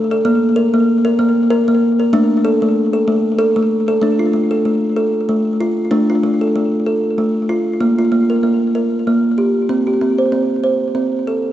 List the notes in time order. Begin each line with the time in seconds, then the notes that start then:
Already playing: A3 D4
0.11 A4
0.25 A#3
0.56 A#4
0.74 A#3
1.05 A#4
1.19 A#3
1.50 A#4
1.68 A#3
1.99 A#4
2.13 A3 D4
2.45 A4
2.62 A3
2.93 A4
3.08 A3
3.38 A4
3.56 A3
3.88 A4
4.02 A3 D4
4.19 F4
4.33 A3
4.51 A4
4.65 A3
4.97 A4
5.29 A3
5.61 F4
5.91 A3 D4
6.10 F4
6.23 A3
6.41 A4
6.55 A3
6.86 A4
7.18 A3
7.50 F4
7.81 A#3
7.99 F4
8.12 A#3
8.30 A#4
8.43 A#3
8.75 A#4
9.07 A#3
9.38 G4
9.69 C4
9.87 G4
10.01 C4
10.18 C5
10.32 C4
10.63 C5
10.95 C4
11.27 A4